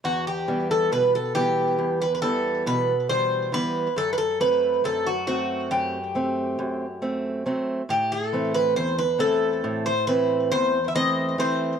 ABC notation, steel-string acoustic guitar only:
X:1
M:9/8
L:1/8
Q:3/8=46
K:Em
V:1 name="Steel-string acoustic guitar" clef=bass
E,, [E,G,B,] B,, [E,G,B,] E,, [E,G,B,] B,, [E,G,] [E,G,B,] | F,, [F,A,C] F,, [A,C] F,, [A,C] F,, [A,C] [F,A,C] | A,, [E,A,C] E,, [E,A,C] A,, [E,A,C] E,, [E,A,C] [E,A,C] |]